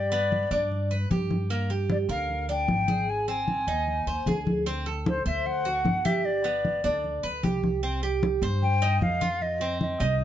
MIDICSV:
0, 0, Header, 1, 5, 480
1, 0, Start_track
1, 0, Key_signature, -3, "minor"
1, 0, Tempo, 395517
1, 1822, Time_signature, 4, 2, 24, 8
1, 12430, End_track
2, 0, Start_track
2, 0, Title_t, "Flute"
2, 0, Program_c, 0, 73
2, 0, Note_on_c, 0, 74, 75
2, 816, Note_off_c, 0, 74, 0
2, 2323, Note_on_c, 0, 74, 64
2, 2396, Note_off_c, 0, 74, 0
2, 2553, Note_on_c, 0, 77, 74
2, 2994, Note_off_c, 0, 77, 0
2, 3040, Note_on_c, 0, 79, 99
2, 3759, Note_on_c, 0, 80, 86
2, 3778, Note_off_c, 0, 79, 0
2, 3991, Note_off_c, 0, 80, 0
2, 3997, Note_on_c, 0, 80, 87
2, 5381, Note_off_c, 0, 80, 0
2, 6165, Note_on_c, 0, 72, 78
2, 6378, Note_off_c, 0, 72, 0
2, 6394, Note_on_c, 0, 76, 82
2, 6632, Note_on_c, 0, 78, 94
2, 6650, Note_off_c, 0, 76, 0
2, 7349, Note_on_c, 0, 76, 86
2, 7368, Note_off_c, 0, 78, 0
2, 7588, Note_on_c, 0, 74, 80
2, 7606, Note_off_c, 0, 76, 0
2, 8545, Note_off_c, 0, 74, 0
2, 10469, Note_on_c, 0, 79, 104
2, 10912, Note_off_c, 0, 79, 0
2, 10948, Note_on_c, 0, 77, 90
2, 11432, Note_on_c, 0, 75, 85
2, 11450, Note_off_c, 0, 77, 0
2, 11906, Note_off_c, 0, 75, 0
2, 11916, Note_on_c, 0, 75, 70
2, 12430, Note_off_c, 0, 75, 0
2, 12430, End_track
3, 0, Start_track
3, 0, Title_t, "Cuban tres"
3, 0, Program_c, 1, 25
3, 0, Note_on_c, 1, 67, 76
3, 125, Note_off_c, 1, 67, 0
3, 143, Note_on_c, 1, 59, 76
3, 608, Note_off_c, 1, 59, 0
3, 621, Note_on_c, 1, 62, 68
3, 1087, Note_off_c, 1, 62, 0
3, 1103, Note_on_c, 1, 71, 59
3, 1335, Note_off_c, 1, 71, 0
3, 1345, Note_on_c, 1, 67, 51
3, 1809, Note_off_c, 1, 67, 0
3, 1824, Note_on_c, 1, 58, 73
3, 2056, Note_off_c, 1, 58, 0
3, 2063, Note_on_c, 1, 67, 57
3, 2528, Note_off_c, 1, 67, 0
3, 2540, Note_on_c, 1, 70, 63
3, 3006, Note_off_c, 1, 70, 0
3, 3021, Note_on_c, 1, 62, 66
3, 3487, Note_off_c, 1, 62, 0
3, 3497, Note_on_c, 1, 68, 61
3, 3965, Note_off_c, 1, 68, 0
3, 3981, Note_on_c, 1, 60, 67
3, 4447, Note_off_c, 1, 60, 0
3, 4463, Note_on_c, 1, 63, 72
3, 4928, Note_off_c, 1, 63, 0
3, 4942, Note_on_c, 1, 72, 61
3, 5175, Note_off_c, 1, 72, 0
3, 5183, Note_on_c, 1, 68, 57
3, 5648, Note_off_c, 1, 68, 0
3, 5659, Note_on_c, 1, 60, 74
3, 5894, Note_off_c, 1, 60, 0
3, 5899, Note_on_c, 1, 69, 63
3, 6367, Note_off_c, 1, 69, 0
3, 6379, Note_on_c, 1, 72, 62
3, 6847, Note_off_c, 1, 72, 0
3, 6859, Note_on_c, 1, 66, 61
3, 7327, Note_off_c, 1, 66, 0
3, 7342, Note_on_c, 1, 67, 75
3, 7808, Note_off_c, 1, 67, 0
3, 7818, Note_on_c, 1, 59, 68
3, 8286, Note_off_c, 1, 59, 0
3, 8301, Note_on_c, 1, 62, 64
3, 8767, Note_off_c, 1, 62, 0
3, 8779, Note_on_c, 1, 71, 70
3, 9013, Note_off_c, 1, 71, 0
3, 9022, Note_on_c, 1, 67, 49
3, 9488, Note_off_c, 1, 67, 0
3, 9502, Note_on_c, 1, 60, 64
3, 9735, Note_off_c, 1, 60, 0
3, 9745, Note_on_c, 1, 67, 65
3, 10209, Note_off_c, 1, 67, 0
3, 10227, Note_on_c, 1, 72, 75
3, 10690, Note_off_c, 1, 72, 0
3, 10703, Note_on_c, 1, 63, 72
3, 11167, Note_off_c, 1, 63, 0
3, 11180, Note_on_c, 1, 65, 64
3, 11646, Note_off_c, 1, 65, 0
3, 11662, Note_on_c, 1, 60, 71
3, 12127, Note_off_c, 1, 60, 0
3, 12139, Note_on_c, 1, 63, 70
3, 12430, Note_off_c, 1, 63, 0
3, 12430, End_track
4, 0, Start_track
4, 0, Title_t, "Upright bass"
4, 0, Program_c, 2, 32
4, 0, Note_on_c, 2, 43, 81
4, 547, Note_off_c, 2, 43, 0
4, 617, Note_on_c, 2, 43, 96
4, 1291, Note_off_c, 2, 43, 0
4, 1340, Note_on_c, 2, 43, 79
4, 2468, Note_off_c, 2, 43, 0
4, 2533, Note_on_c, 2, 38, 95
4, 3209, Note_off_c, 2, 38, 0
4, 3253, Note_on_c, 2, 32, 78
4, 4385, Note_off_c, 2, 32, 0
4, 4455, Note_on_c, 2, 39, 80
4, 4905, Note_off_c, 2, 39, 0
4, 4934, Note_on_c, 2, 39, 55
4, 5161, Note_off_c, 2, 39, 0
4, 5173, Note_on_c, 2, 38, 86
4, 6305, Note_off_c, 2, 38, 0
4, 6380, Note_on_c, 2, 38, 91
4, 7053, Note_off_c, 2, 38, 0
4, 7094, Note_on_c, 2, 31, 80
4, 8226, Note_off_c, 2, 31, 0
4, 8303, Note_on_c, 2, 38, 85
4, 8749, Note_off_c, 2, 38, 0
4, 8783, Note_on_c, 2, 38, 65
4, 9006, Note_off_c, 2, 38, 0
4, 9020, Note_on_c, 2, 36, 78
4, 10148, Note_off_c, 2, 36, 0
4, 10214, Note_on_c, 2, 43, 92
4, 10889, Note_off_c, 2, 43, 0
4, 10932, Note_on_c, 2, 41, 79
4, 12063, Note_off_c, 2, 41, 0
4, 12136, Note_on_c, 2, 36, 102
4, 12430, Note_off_c, 2, 36, 0
4, 12430, End_track
5, 0, Start_track
5, 0, Title_t, "Drums"
5, 149, Note_on_c, 9, 63, 36
5, 271, Note_off_c, 9, 63, 0
5, 390, Note_on_c, 9, 63, 50
5, 511, Note_off_c, 9, 63, 0
5, 631, Note_on_c, 9, 63, 33
5, 752, Note_off_c, 9, 63, 0
5, 869, Note_on_c, 9, 63, 34
5, 990, Note_off_c, 9, 63, 0
5, 1111, Note_on_c, 9, 63, 34
5, 1233, Note_off_c, 9, 63, 0
5, 1347, Note_on_c, 9, 63, 82
5, 1468, Note_off_c, 9, 63, 0
5, 1584, Note_on_c, 9, 63, 73
5, 1706, Note_off_c, 9, 63, 0
5, 1825, Note_on_c, 9, 63, 33
5, 1947, Note_off_c, 9, 63, 0
5, 2063, Note_on_c, 9, 63, 35
5, 2184, Note_off_c, 9, 63, 0
5, 2301, Note_on_c, 9, 63, 81
5, 2422, Note_off_c, 9, 63, 0
5, 2542, Note_on_c, 9, 63, 36
5, 2663, Note_off_c, 9, 63, 0
5, 2778, Note_on_c, 9, 63, 33
5, 2900, Note_off_c, 9, 63, 0
5, 3021, Note_on_c, 9, 63, 33
5, 3142, Note_off_c, 9, 63, 0
5, 3257, Note_on_c, 9, 63, 83
5, 3378, Note_off_c, 9, 63, 0
5, 3495, Note_on_c, 9, 63, 77
5, 3616, Note_off_c, 9, 63, 0
5, 3738, Note_on_c, 9, 63, 31
5, 3859, Note_off_c, 9, 63, 0
5, 3980, Note_on_c, 9, 63, 32
5, 4101, Note_off_c, 9, 63, 0
5, 4219, Note_on_c, 9, 63, 54
5, 4340, Note_off_c, 9, 63, 0
5, 4463, Note_on_c, 9, 63, 33
5, 4584, Note_off_c, 9, 63, 0
5, 4703, Note_on_c, 9, 63, 33
5, 4825, Note_off_c, 9, 63, 0
5, 4944, Note_on_c, 9, 63, 32
5, 5066, Note_off_c, 9, 63, 0
5, 5183, Note_on_c, 9, 63, 79
5, 5304, Note_off_c, 9, 63, 0
5, 5422, Note_on_c, 9, 63, 70
5, 5543, Note_off_c, 9, 63, 0
5, 5663, Note_on_c, 9, 63, 31
5, 5784, Note_off_c, 9, 63, 0
5, 5905, Note_on_c, 9, 63, 36
5, 6027, Note_off_c, 9, 63, 0
5, 6145, Note_on_c, 9, 63, 83
5, 6267, Note_off_c, 9, 63, 0
5, 6391, Note_on_c, 9, 63, 34
5, 6512, Note_off_c, 9, 63, 0
5, 6632, Note_on_c, 9, 63, 31
5, 6753, Note_off_c, 9, 63, 0
5, 6868, Note_on_c, 9, 63, 29
5, 6989, Note_off_c, 9, 63, 0
5, 7105, Note_on_c, 9, 63, 85
5, 7227, Note_off_c, 9, 63, 0
5, 7347, Note_on_c, 9, 63, 77
5, 7469, Note_off_c, 9, 63, 0
5, 7586, Note_on_c, 9, 63, 30
5, 7708, Note_off_c, 9, 63, 0
5, 7825, Note_on_c, 9, 63, 34
5, 7947, Note_off_c, 9, 63, 0
5, 8067, Note_on_c, 9, 63, 53
5, 8188, Note_off_c, 9, 63, 0
5, 8306, Note_on_c, 9, 63, 33
5, 8428, Note_off_c, 9, 63, 0
5, 8547, Note_on_c, 9, 63, 35
5, 8668, Note_off_c, 9, 63, 0
5, 8785, Note_on_c, 9, 63, 33
5, 8906, Note_off_c, 9, 63, 0
5, 9027, Note_on_c, 9, 63, 79
5, 9148, Note_off_c, 9, 63, 0
5, 9267, Note_on_c, 9, 63, 72
5, 9388, Note_off_c, 9, 63, 0
5, 9509, Note_on_c, 9, 63, 31
5, 9630, Note_off_c, 9, 63, 0
5, 9750, Note_on_c, 9, 63, 33
5, 9871, Note_off_c, 9, 63, 0
5, 9986, Note_on_c, 9, 63, 72
5, 10107, Note_off_c, 9, 63, 0
5, 10228, Note_on_c, 9, 63, 32
5, 10349, Note_off_c, 9, 63, 0
5, 10466, Note_on_c, 9, 63, 36
5, 10587, Note_off_c, 9, 63, 0
5, 10707, Note_on_c, 9, 63, 32
5, 10828, Note_off_c, 9, 63, 0
5, 10947, Note_on_c, 9, 63, 83
5, 11068, Note_off_c, 9, 63, 0
5, 11186, Note_on_c, 9, 63, 73
5, 11308, Note_off_c, 9, 63, 0
5, 11425, Note_on_c, 9, 63, 33
5, 11547, Note_off_c, 9, 63, 0
5, 11667, Note_on_c, 9, 63, 33
5, 11788, Note_off_c, 9, 63, 0
5, 11903, Note_on_c, 9, 63, 56
5, 12024, Note_off_c, 9, 63, 0
5, 12140, Note_on_c, 9, 63, 37
5, 12262, Note_off_c, 9, 63, 0
5, 12383, Note_on_c, 9, 63, 35
5, 12430, Note_off_c, 9, 63, 0
5, 12430, End_track
0, 0, End_of_file